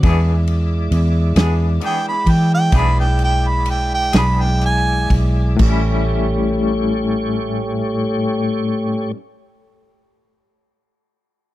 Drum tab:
CC |------------|x-----------|
RD |xxxxxxxxxxxx|------------|
SD |---o-----o--|------------|
BD |o----oo----o|o-----------|